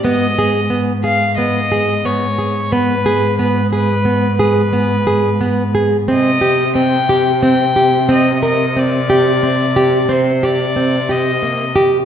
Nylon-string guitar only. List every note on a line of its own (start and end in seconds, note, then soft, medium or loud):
0.05 0.26 B3 medium
0.39 0.60 G#4 medium
0.70 0.92 B3 medium
1.04 1.25 G#4 medium
1.38 1.59 B3 medium
1.72 1.93 G#4 medium
2.05 2.27 B3 medium
2.38 2.60 G#4 medium
2.72 2.94 B3 medium
3.06 3.27 G#4 medium
3.39 3.61 B3 medium
3.73 3.94 G#4 medium
4.05 4.27 B3 medium
4.39 4.61 G#4 medium
4.73 4.95 B3 medium
5.07 5.29 G#4 medium
5.41 5.63 B3 medium
5.75 5.96 G#4 medium
6.08 6.30 C4 medium
6.41 6.63 G4 medium
6.75 6.97 C4 medium
7.09 7.31 G4 medium
7.43 7.65 C4 medium
7.76 7.98 G4 medium
8.09 8.31 C4 medium
8.43 8.64 A#4 medium
8.77 8.98 C4 medium
9.10 9.31 G4 medium
9.43 9.65 C4 medium
9.76 9.98 G4 medium
10.09 10.31 C4 medium
10.43 10.65 G4 medium
10.76 10.98 C4 medium
11.09 11.31 G4 medium
11.43 11.64 A#3 medium
11.76 11.97 G4 medium